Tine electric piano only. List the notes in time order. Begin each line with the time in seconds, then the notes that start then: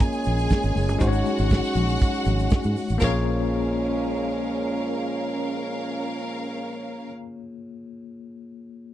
Already playing: A#3 F4 G#4 C#5
0.99 G#3 D#4 F#4 C5
1.08 C#5
2.98 A#3 F4
3.02 G#4 C#5